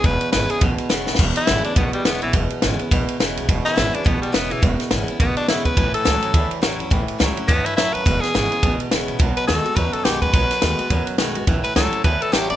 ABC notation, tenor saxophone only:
X:1
M:4/4
L:1/8
Q:"Swing" 1/4=210
K:Emix
V:1 name="Tenor saxophone"
B2 B G z4 | z E2 D B, =G, B, E, | z8 | z E2 D B, =G, B, E, |
z4 B, D E B- | B A4 z3 | z4 B, E E B- | B G4 z3 |
z B A2 B A =G B- | B4- B z3 | z B A2 B A =G d |]